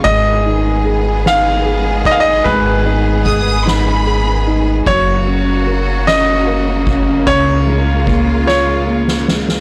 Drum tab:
RD |--x-x-x-x---|x-x-x-x-x-x-|x-x-x-x-x---|--x-x-------|
SD |------o-----|------o-----|------o-----|------o--ooo|
BD |o---------o-|o---o-------|o---------o-|o---o-------|